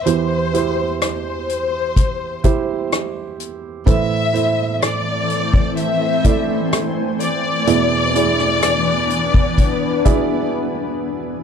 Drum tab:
HH |x-x-x-x-x-x-x-x-|x-x-x-x-x-x-x-x-|x-x-x-x-x-x-----|
SD |----r-------r---|----r-------r---|---rr-----------|
BD |--------o-o-----|o------o--o-----|-------oo-o-----|